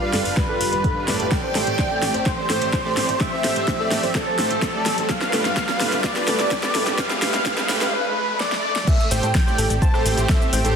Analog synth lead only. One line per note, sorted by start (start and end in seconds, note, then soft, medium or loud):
0.00 0.36 F5 loud
0.37 1.33 B4 loud
1.31 2.27 G5 loud
2.26 3.22 C5 loud
3.20 4.14 E5 loud
4.15 5.11 A4 loud
5.09 6.05 F5 loud
6.04 6.98 D5 loud
6.98 7.94 F5 loud
7.93 8.40 B4 medium
8.40 8.89 D5 medium
8.87 9.10 E5 medium
9.11 9.78 G5 loud
9.82 10.07 A5 loud
10.05 10.28 G5 medium
10.29 10.54 E5 loud
10.53 10.76 G5 medium